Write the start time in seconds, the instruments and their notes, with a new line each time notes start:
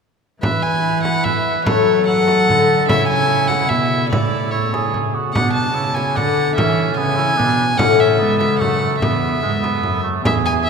0.39 cello E3, harp E3 G#3 E4 B4, cor anglais B4, violin E5
0.43 frame drum
0.62 violin G#5
1.03 violin F#5, frame drum
1.21 harp G#3 E4 B4, violin E5
1.25 cor anglais B4, frame drum
1.62 cello F#3, harp F#3 A3 A4, violin C#5
1.66 cor anglais A4, frame drum
2.04 harp A3 A4, cor anglais A4, violin F#5
2.28 frame drum
2.48 harp D3, cello D3, frame drum
2.86 cello C#3, harp C#3 E4 G#4, cor anglais E4, violin E5, frame drum
3.08 violin G#5
3.48 violin F#5, frame drum
3.68 cello B2, harp B2 E4 G#4, cor anglais E4, violin E5, frame drum
4.08 cello A2, harp A2 C#3 A3 E4, cor anglais E4, violin D5
4.13 frame drum
4.49 harp C#4 E4 C#5, cor anglais E4, violin C#5
4.73 cor anglais G#4, frame drum
4.94 frame drum
5.15 cor anglais F#4
5.30 cello B2, harp B3 F#4 D5, violin F#5
5.34 harp B2, cor anglais D4, frame drum
5.53 violin A5
5.74 cello C#3, cor anglais E4
5.94 violin G#5, frame drum
6.12 cello D3, harp D3 B3 D4 D5, cor anglais D4
6.16 violin F#5, frame drum
6.52 harp E3 B3 E4 B4
6.56 cello E3, cor anglais C#4, violin E5, frame drum
6.93 cello C#3, harp B3 E4 B4, violin G#5
6.97 cor anglais B3
7.16 cor anglais E4, frame drum
7.37 cello B2, harp B2, cor anglais D4, frame drum
7.75 cello A2, harp C#3 C#4 E4 A4, cor anglais C#4, violin F#5
7.79 frame drum
8.00 violin E5
8.18 cello G#2, harp G#2, cor anglais B3
8.39 violin E5, frame drum
8.59 cello F#2, harp F#2, cor anglais A3, violin F#5, frame drum
8.81 cor anglais A3
8.97 harp E2 B3 E4 G#4, cello E2, violin E5
9.02 cor anglais B3, frame drum
9.42 harp G#2, cello G#2, cor anglais G#3
9.62 cor anglais B3, frame drum
9.83 cello F#2, harp F#2, frame drum
10.03 cor anglais A3
10.21 cello E2, harp E2 B3 E4 G#4, cor anglais G#4
10.25 violin E5, frame drum
10.46 violin G#5
10.64 violin E5